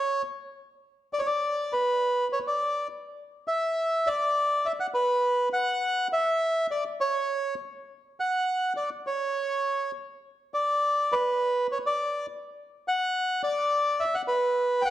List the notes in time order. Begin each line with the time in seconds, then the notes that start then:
Already playing: C#5
1.13 D5
1.19 C#5
1.26 D5
1.73 B4
2.33 C#5
2.47 D5
3.48 E5
4.07 D5
4.66 E5
4.80 F#5
4.94 B4
5.53 F#5
6.13 E5
6.71 D5
7.01 C#5
8.20 F#5
8.77 D5
9.07 C#5
10.54 D5
11.12 B4
11.72 C#5
11.86 D5
12.88 F#5
13.43 D5
14.00 E5
14.15 F#5
14.28 B4
14.82 F#5 G5